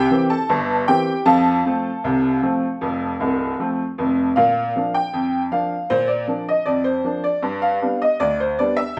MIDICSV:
0, 0, Header, 1, 2, 480
1, 0, Start_track
1, 0, Key_signature, -2, "major"
1, 0, Tempo, 777202
1, 777, Time_signature, 2, 2, 24, 8
1, 2700, Tempo, 767263
1, 5593, End_track
2, 0, Start_track
2, 0, Title_t, "Upright piano"
2, 0, Program_c, 0, 0
2, 0, Note_on_c, 0, 67, 63
2, 0, Note_on_c, 0, 79, 87
2, 67, Note_on_c, 0, 52, 53
2, 69, Note_on_c, 0, 58, 50
2, 70, Note_on_c, 0, 60, 61
2, 133, Note_off_c, 0, 79, 0
2, 166, Note_off_c, 0, 67, 0
2, 185, Note_on_c, 0, 81, 81
2, 191, Note_on_c, 0, 69, 62
2, 196, Note_off_c, 0, 52, 0
2, 197, Note_off_c, 0, 58, 0
2, 198, Note_off_c, 0, 60, 0
2, 305, Note_on_c, 0, 43, 74
2, 306, Note_on_c, 0, 31, 81
2, 469, Note_off_c, 0, 81, 0
2, 505, Note_off_c, 0, 43, 0
2, 506, Note_off_c, 0, 31, 0
2, 518, Note_off_c, 0, 69, 0
2, 543, Note_on_c, 0, 79, 82
2, 546, Note_on_c, 0, 58, 42
2, 547, Note_on_c, 0, 52, 47
2, 548, Note_on_c, 0, 67, 62
2, 550, Note_on_c, 0, 60, 50
2, 676, Note_off_c, 0, 52, 0
2, 676, Note_off_c, 0, 58, 0
2, 679, Note_off_c, 0, 60, 0
2, 733, Note_off_c, 0, 79, 0
2, 766, Note_off_c, 0, 67, 0
2, 775, Note_on_c, 0, 41, 92
2, 776, Note_on_c, 0, 53, 82
2, 776, Note_on_c, 0, 81, 91
2, 780, Note_on_c, 0, 77, 64
2, 785, Note_on_c, 0, 69, 69
2, 981, Note_off_c, 0, 41, 0
2, 981, Note_off_c, 0, 53, 0
2, 1025, Note_on_c, 0, 53, 44
2, 1027, Note_on_c, 0, 57, 47
2, 1028, Note_on_c, 0, 60, 52
2, 1155, Note_off_c, 0, 53, 0
2, 1157, Note_off_c, 0, 57, 0
2, 1158, Note_off_c, 0, 60, 0
2, 1261, Note_on_c, 0, 36, 70
2, 1264, Note_on_c, 0, 48, 77
2, 1464, Note_off_c, 0, 36, 0
2, 1466, Note_off_c, 0, 48, 0
2, 1496, Note_on_c, 0, 53, 50
2, 1501, Note_on_c, 0, 57, 45
2, 1501, Note_on_c, 0, 60, 54
2, 1629, Note_off_c, 0, 53, 0
2, 1633, Note_off_c, 0, 57, 0
2, 1633, Note_off_c, 0, 60, 0
2, 1737, Note_on_c, 0, 41, 77
2, 1740, Note_on_c, 0, 29, 74
2, 1930, Note_off_c, 0, 41, 0
2, 1931, Note_off_c, 0, 81, 0
2, 1932, Note_off_c, 0, 29, 0
2, 1978, Note_on_c, 0, 24, 74
2, 1979, Note_on_c, 0, 36, 71
2, 2171, Note_off_c, 0, 24, 0
2, 2171, Note_off_c, 0, 36, 0
2, 2197, Note_off_c, 0, 77, 0
2, 2199, Note_off_c, 0, 69, 0
2, 2220, Note_on_c, 0, 53, 49
2, 2224, Note_on_c, 0, 57, 46
2, 2225, Note_on_c, 0, 60, 48
2, 2352, Note_off_c, 0, 53, 0
2, 2355, Note_off_c, 0, 57, 0
2, 2355, Note_off_c, 0, 60, 0
2, 2459, Note_on_c, 0, 41, 74
2, 2463, Note_on_c, 0, 29, 68
2, 2651, Note_off_c, 0, 41, 0
2, 2653, Note_off_c, 0, 29, 0
2, 2692, Note_on_c, 0, 77, 78
2, 2699, Note_on_c, 0, 46, 77
2, 2904, Note_off_c, 0, 46, 0
2, 2941, Note_on_c, 0, 53, 43
2, 2947, Note_on_c, 0, 58, 41
2, 2950, Note_on_c, 0, 62, 41
2, 3039, Note_off_c, 0, 77, 0
2, 3058, Note_on_c, 0, 79, 73
2, 3074, Note_off_c, 0, 53, 0
2, 3078, Note_off_c, 0, 58, 0
2, 3080, Note_off_c, 0, 62, 0
2, 3176, Note_on_c, 0, 41, 66
2, 3348, Note_off_c, 0, 79, 0
2, 3383, Note_off_c, 0, 41, 0
2, 3416, Note_on_c, 0, 53, 43
2, 3417, Note_on_c, 0, 77, 68
2, 3420, Note_on_c, 0, 58, 37
2, 3425, Note_on_c, 0, 62, 42
2, 3550, Note_off_c, 0, 53, 0
2, 3553, Note_off_c, 0, 58, 0
2, 3556, Note_off_c, 0, 62, 0
2, 3647, Note_off_c, 0, 77, 0
2, 3656, Note_on_c, 0, 72, 88
2, 3659, Note_on_c, 0, 46, 75
2, 3767, Note_on_c, 0, 74, 61
2, 3778, Note_off_c, 0, 72, 0
2, 3864, Note_off_c, 0, 46, 0
2, 3892, Note_on_c, 0, 53, 38
2, 3894, Note_on_c, 0, 58, 41
2, 3895, Note_on_c, 0, 62, 43
2, 4002, Note_off_c, 0, 74, 0
2, 4022, Note_on_c, 0, 75, 68
2, 4026, Note_off_c, 0, 53, 0
2, 4028, Note_off_c, 0, 58, 0
2, 4028, Note_off_c, 0, 62, 0
2, 4129, Note_on_c, 0, 74, 70
2, 4133, Note_on_c, 0, 41, 60
2, 4142, Note_off_c, 0, 75, 0
2, 4245, Note_on_c, 0, 72, 69
2, 4255, Note_off_c, 0, 74, 0
2, 4340, Note_off_c, 0, 41, 0
2, 4372, Note_on_c, 0, 53, 42
2, 4373, Note_on_c, 0, 58, 38
2, 4377, Note_on_c, 0, 62, 45
2, 4480, Note_off_c, 0, 72, 0
2, 4492, Note_on_c, 0, 74, 69
2, 4506, Note_off_c, 0, 53, 0
2, 4507, Note_off_c, 0, 58, 0
2, 4510, Note_off_c, 0, 62, 0
2, 4611, Note_on_c, 0, 43, 75
2, 4724, Note_off_c, 0, 74, 0
2, 4730, Note_on_c, 0, 77, 72
2, 4819, Note_off_c, 0, 43, 0
2, 4855, Note_on_c, 0, 55, 41
2, 4857, Note_on_c, 0, 62, 44
2, 4858, Note_on_c, 0, 59, 40
2, 4963, Note_off_c, 0, 77, 0
2, 4980, Note_on_c, 0, 75, 68
2, 4988, Note_off_c, 0, 55, 0
2, 4990, Note_off_c, 0, 59, 0
2, 4990, Note_off_c, 0, 62, 0
2, 5094, Note_on_c, 0, 74, 84
2, 5096, Note_on_c, 0, 38, 64
2, 5100, Note_off_c, 0, 75, 0
2, 5216, Note_off_c, 0, 74, 0
2, 5221, Note_on_c, 0, 72, 75
2, 5301, Note_off_c, 0, 38, 0
2, 5337, Note_on_c, 0, 74, 77
2, 5340, Note_off_c, 0, 72, 0
2, 5341, Note_on_c, 0, 55, 39
2, 5342, Note_on_c, 0, 59, 44
2, 5345, Note_on_c, 0, 62, 44
2, 5449, Note_on_c, 0, 76, 77
2, 5457, Note_off_c, 0, 74, 0
2, 5472, Note_off_c, 0, 55, 0
2, 5472, Note_off_c, 0, 59, 0
2, 5474, Note_off_c, 0, 62, 0
2, 5593, Note_off_c, 0, 76, 0
2, 5593, End_track
0, 0, End_of_file